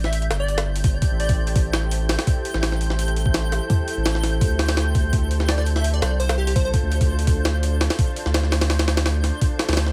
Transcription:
0.00 0.29 A1 medium
0.00 5.09 E4 medium
0.00 5.09 G4 medium
0.00 9.93 A4 medium
0.00 9.93 C5 medium
0.00 9.93 G6 medium
0.04 0.25 E5 medium
0.04 snare medium
0.13 open hi-hat medium
0.22 closed hi-hat soft
0.30 1.01 G1 medium
0.30 snare loud
0.30 open hi-hat medium
0.40 0.61 D5 medium
0.48 open hi-hat medium
0.58 snare loud
0.58 open hi-hat medium
0.76 open hi-hat medium
0.84 kick loud
0.84 open hi-hat medium
1.02 kick loud
1.02 open hi-hat medium
1.11 2.17 A1 loud
1.20 1.70 D5 loud
1.20 open hi-hat medium
1.29 kick loud
1.29 open hi-hat medium
1.47 open hi-hat medium
1.56 kick loud
1.56 open hi-hat medium
1.73 snare loud
1.73 open hi-hat medium
1.91 open hi-hat medium
2.09 snare loud
2.09 open hi-hat medium
2.19 snare loud
2.19 open hi-hat medium
2.27 kick loud
2.27 open hi-hat medium
2.45 open hi-hat medium
2.54 3.60 A1 loud
2.54 snare medium
2.63 snare loud
2.63 open hi-hat medium
2.72 snare soft
2.81 open hi-hat medium
2.90 snare medium
2.99 open hi-hat medium
3.08 closed hi-hat soft
3.16 open hi-hat medium
3.26 kick loud
3.34 snare loud
3.34 open hi-hat medium
3.52 snare medium
3.52 open hi-hat medium
3.70 kick loud
3.70 open hi-hat medium
3.88 open hi-hat medium
3.97 4.43 A1 loud
4.06 snare loud
4.06 open hi-hat medium
4.15 snare soft
4.23 snare medium
4.23 open hi-hat medium
4.41 5.11 D2 loud
4.41 kick loud
4.41 open hi-hat medium
4.59 snare loud
4.59 open hi-hat medium
4.68 snare loud
4.68 open hi-hat medium
4.77 snare loud
4.77 open hi-hat medium
4.95 kick loud
4.95 open hi-hat medium
5.13 6.01 D2 loud
5.13 9.93 D4 medium
5.13 9.93 F4 medium
5.13 kick loud
5.13 open hi-hat medium
5.31 open hi-hat medium
5.40 snare medium
5.48 5.54 D5 medium
5.48 snare loud
5.48 open hi-hat medium
5.58 5.63 D5 medium
5.58 snare soft
5.66 open hi-hat medium
5.76 5.93 E5 medium
5.76 snare medium
5.84 open hi-hat medium
5.94 6.15 D5 medium
5.94 closed hi-hat soft
6.02 6.72 C2 medium
6.02 snare loud
6.02 open hi-hat medium
6.20 6.36 C5 medium
6.20 open hi-hat medium
6.29 snare loud
6.29 open hi-hat medium
6.38 6.44 G4 medium
6.47 6.53 G4 medium
6.47 open hi-hat medium
6.56 6.62 C5 medium
6.56 kick loud
6.56 open hi-hat medium
6.65 6.70 C5 medium
6.74 kick loud
6.74 open hi-hat medium
6.83 7.88 D2 loud
6.92 open hi-hat medium
7.01 kick loud
7.01 open hi-hat medium
7.19 open hi-hat medium
7.27 kick loud
7.27 open hi-hat medium
7.45 snare loud
7.45 open hi-hat medium
7.63 open hi-hat medium
7.81 snare loud
7.81 open hi-hat medium
7.90 snare loud
7.90 open hi-hat medium
7.99 kick loud
7.99 open hi-hat medium
8.16 open hi-hat medium
8.26 9.31 D2 loud
8.26 snare medium
8.34 snare loud
8.34 open hi-hat medium
8.44 snare soft
8.52 snare loud
8.52 open hi-hat medium
8.61 snare loud
8.61 open hi-hat medium
8.70 snare loud
8.70 open hi-hat medium
8.79 snare loud
8.79 open hi-hat medium
8.88 snare loud
8.88 open hi-hat medium
8.97 snare loud
8.97 open hi-hat medium
9.06 snare loud
9.06 open hi-hat medium
9.24 snare medium
9.24 open hi-hat medium
9.41 kick loud
9.41 open hi-hat medium
9.59 snare loud
9.59 open hi-hat medium
9.69 9.93 D2 loud
9.69 snare medium
9.69 open hi-hat medium
9.73 snare medium
9.73 open hi-hat medium
9.77 snare loud
9.77 open hi-hat medium
9.86 snare soft

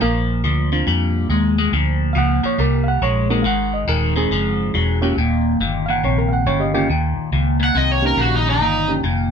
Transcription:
0.01 0.43 A#1 medium
0.01 0.41 A#2 medium
0.01 0.41 F3 medium
0.01 1.27 A#3 loud
0.44 0.86 D2 medium
0.44 0.69 A#2 medium
0.44 0.69 F3 medium
0.72 0.86 A#2 medium
0.72 0.86 F3 medium
0.72 1.27 C4 medium
0.72 1.27 D4 medium
0.72 1.27 F4 medium
0.87 1.29 F2 medium
0.87 1.27 A#2 medium
0.87 1.27 G3 medium
1.29 1.71 D#2 medium
1.29 1.55 A#2 medium
1.29 1.56 G#3 medium
1.58 1.72 A#2 medium
1.58 1.72 G#3 medium
1.72 2.14 D2 medium
1.72 2.13 A#2 medium
1.72 2.13 F3 medium
2.13 2.42 C#2 medium
2.13 2.41 A#2 medium
2.13 2.41 F3 medium
2.13 2.16 F5 medium
2.18 2.44 F#5 loud
2.43 2.57 A#2 medium
2.43 2.58 F3 medium
2.43 2.59 C#5 medium
2.58 3.00 C2 medium
2.58 2.99 A#2 medium
2.58 2.99 G3 medium
2.58 2.87 A#4 medium
2.84 2.86 F5 medium
2.88 3.02 F#5 loud
3.02 3.44 A#1 loud
3.02 3.27 A#2 medium
3.02 3.27 G#3 medium
3.02 3.30 C#5 loud
3.29 3.44 A#2 medium
3.29 3.44 G#3 medium
3.29 3.43 A#3 medium
3.29 3.43 C4 medium
3.29 3.43 D#4 medium
3.29 3.44 F#4 medium
3.29 3.45 A#4 medium
3.42 3.87 G#1 medium
3.42 3.85 G#2 medium
3.42 3.85 D#3 medium
3.42 3.46 F5 medium
3.47 3.73 F#5 loud
3.74 3.88 D#5 medium
3.87 4.29 D#1 medium
3.87 4.13 G#2 medium
3.87 4.13 D#3 loud
3.87 4.16 A#4 medium
4.16 4.29 G#2 medium
4.16 4.30 D#3 medium
4.16 4.98 C4 medium
4.16 5.00 G#4 medium
4.31 4.73 F#1 medium
4.31 4.71 G#2 medium
4.31 4.72 F3 medium
4.74 5.16 E1 medium
4.74 4.99 G#2 medium
4.74 5.00 F#3 medium
5.01 5.16 G#2 medium
5.01 5.16 F#3 medium
5.01 5.15 A#3 medium
5.01 5.15 C#4 medium
5.01 5.16 F4 medium
5.01 5.16 G4 medium
5.17 5.58 D#1 medium
5.17 5.57 D#2 medium
5.17 5.58 A#2 medium
5.60 6.02 G1 medium
5.60 5.85 D#2 medium
5.60 5.86 A#2 medium
5.86 6.02 D#2 medium
5.86 6.02 A#2 medium
5.86 5.90 F5 medium
5.90 6.03 F#5 loud
6.03 6.45 A#1 medium
6.03 6.43 D#2 medium
6.03 6.43 C3 medium
6.03 6.18 C#5 medium
6.18 6.32 A#4 medium
6.28 6.32 F5 medium
6.33 6.46 F#5 medium
6.46 6.88 G1 loud
6.46 6.71 D#2 medium
6.46 6.72 C#3 medium
6.46 6.60 C#5 medium
6.60 6.73 G4 medium
6.60 6.88 D#5 medium
6.73 6.88 D#2 medium
6.73 6.88 C#3 medium
6.73 6.87 D#3 medium
6.73 6.87 A#3 medium
6.73 6.88 C#4 medium
6.73 6.88 F4 medium
6.73 6.88 G4 medium
6.89 7.15 D#2 medium
6.89 7.29 D#2 medium
6.89 7.29 A#2 medium
7.17 muted fingered electric bass stroke soft
7.32 7.73 C#2 medium
7.32 7.57 D#2 medium
7.32 7.57 A#2 medium
7.60 7.73 D#2 medium
7.60 7.73 A#2 medium
7.64 7.76 F#5 medium
7.75 8.16 C2 medium
7.75 8.15 D#2 medium
7.75 8.15 C3 medium
7.75 7.92 D#5 medium
7.92 8.04 C#5 medium
8.02 8.57 F3 medium
8.02 8.57 A#3 medium
8.02 8.57 C#4 medium
8.02 8.57 D#4 medium
8.02 8.58 G4 medium
8.07 8.19 A#4 medium
8.17 8.59 A#1 loud
8.17 8.43 D#2 medium
8.17 8.43 C#3 medium
8.17 8.33 F#4 medium
8.36 8.48 D#4 medium
8.46 8.59 D#2 medium
8.46 8.59 C#3 medium
8.50 8.90 D#4 medium
8.60 9.02 G1 medium
8.60 9.01 D#2 medium
8.60 9.01 A#2 medium
8.88 9.02 F3 medium
8.88 9.02 A#3 medium
8.88 9.02 C#4 medium
8.88 9.02 D#4 medium
8.88 9.02 G4 medium
9.04 9.31 F1 medium
9.04 9.29 D#2 medium
9.04 9.29 A#2 medium

